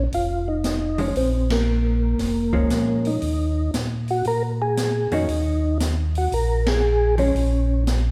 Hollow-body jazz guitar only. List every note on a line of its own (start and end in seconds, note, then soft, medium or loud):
0.98 1.14 F3 medium
0.98 1.14 G#3 medium
0.98 1.15 C#4 medium
2.53 3.19 F3 medium
2.53 3.19 G#3 medium
2.53 3.19 C#4 medium
5.12 5.27 D#3 medium
5.12 5.27 A#3 medium
5.12 5.28 C#4 medium
5.12 5.28 F#4 medium
7.18 7.34 F3 medium
7.18 7.34 G#3 medium
7.18 7.34 C#4 medium